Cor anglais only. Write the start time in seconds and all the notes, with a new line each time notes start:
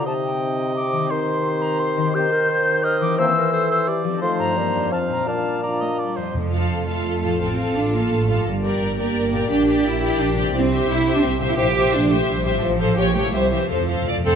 0.06 D#5
1.10 C5
2.15 C5
2.84 D#5
3.19 C5
3.53 C5
3.71 C5
3.88 D5
4.22 C5
4.92 F5
5.28 F5
5.63 D5
5.81 D#5
5.99 D5
6.16 C5
14.25 C4